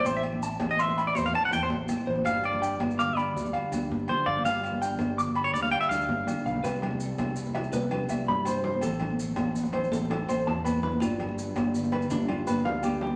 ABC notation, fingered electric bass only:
X:1
M:12/8
L:1/8
Q:3/8=110
K:C
V:1 name="Fingered electric bass" clef=bass
A,,,3 A,,,3 E,, z E,, A,,, z A,,, | G,,,3 G,,,3 D,, z D,, G,,, z G,,, | G,,,3 G,,,3 D,, z D,, G,,, z B,,, | C,,3 C,,3 C,,2 C,, G,,3 |
A,,,3 A,,,3 A,,,2 A,,, E,,3 | G,,,3 G,,,3 G,,,2 G,,, D,,3 |]